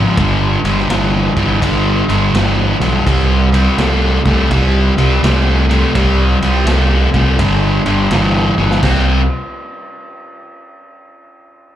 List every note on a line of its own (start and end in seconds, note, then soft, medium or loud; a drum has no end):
0.00 0.15 G#2 medium
0.00 0.15 F3 medium
0.17 0.56 G1 loud
0.17 0.60 G2 medium
0.17 0.60 D3 medium
0.17 kick loud
0.17 ride medium
0.64 0.85 G1 medium
0.64 0.87 G2 medium
0.64 0.87 D3 medium
0.64 ride medium
0.78 snare soft
0.90 1.28 G1 medium
0.90 1.32 G2 medium
0.90 1.32 E3 medium
0.90 snare loud
0.90 ride medium
1.36 1.57 G1 medium
1.36 1.59 G2 medium
1.36 1.59 E3 medium
1.36 kick medium
1.36 ride medium
1.61 2.01 G1 medium
1.61 2.04 G2 medium
1.61 2.04 D3 medium
1.61 kick medium
1.61 ride loud
2.09 2.30 G1 medium
2.09 2.31 G2 medium
2.09 2.32 D3 medium
2.09 ride medium
2.34 2.73 G1 medium
2.34 2.76 G2 medium
2.34 2.76 E3 medium
2.34 snare loud
2.34 ride medium
2.80 3.01 B1 medium
2.80 3.04 G2 medium
2.80 3.04 E3 medium
2.80 ride medium
3.06 3.66 C2 loud
3.06 3.48 C3 medium
3.06 3.49 G3 medium
3.06 kick loud
3.06 ride loud
3.54 3.76 C3 medium
3.54 3.76 G3 medium
3.54 ride medium
3.78 4.17 C2 medium
3.78 4.21 C3 medium
3.78 4.21 A3 medium
3.78 snare loud
3.78 ride medium
4.25 4.46 C2 medium
4.25 4.49 C3 medium
4.25 4.49 A3 medium
4.25 kick medium
4.25 ride medium
4.50 4.89 C2 loud
4.50 4.93 C3 medium
4.50 4.93 G3 medium
4.50 kick medium
4.50 ride medium
4.97 5.18 C2 medium
4.97 5.20 C3 medium
4.97 5.20 G3 medium
4.97 ride medium
5.23 5.82 C2 medium
5.23 5.65 C3 medium
5.23 5.65 A3 medium
5.23 snare loud
5.23 ride medium
5.70 5.92 C3 medium
5.70 5.92 A3 medium
5.70 ride medium
5.95 6.34 C2 loud
5.95 6.37 C3 medium
5.95 6.37 G3 medium
5.95 kick loud
5.95 ride medium
6.42 6.63 C2 medium
6.42 6.65 C3 medium
6.42 6.65 G3 medium
6.42 ride medium
6.66 7.05 C2 medium
6.66 7.09 C3 medium
6.66 7.09 A3 medium
6.66 snare loud
6.66 ride medium
7.14 7.35 C2 medium
7.14 7.37 C3 medium
7.14 7.37 A3 medium
7.14 kick medium
7.14 ride medium
7.39 7.78 G1 loud
7.39 7.81 G2 medium
7.39 7.82 D3 medium
7.39 kick medium
7.39 ride loud
7.86 8.07 G1 medium
7.86 8.09 G2 medium
7.86 8.09 D3 medium
7.86 ride medium
8.11 8.50 G1 medium
8.11 8.53 G2 medium
8.11 8.54 E3 medium
8.11 snare loud
8.11 ride loud
8.58 8.79 G1 medium
8.58 8.81 G2 medium
8.58 8.81 E3 medium
8.58 high tom medium
8.71 snare medium
8.82 9.26 C2 medium
8.82 9.20 C3 medium
8.82 9.20 G3 medium
8.82 9.21 C4 medium
8.82 kick loud
8.82 snare medium
8.82 crash medium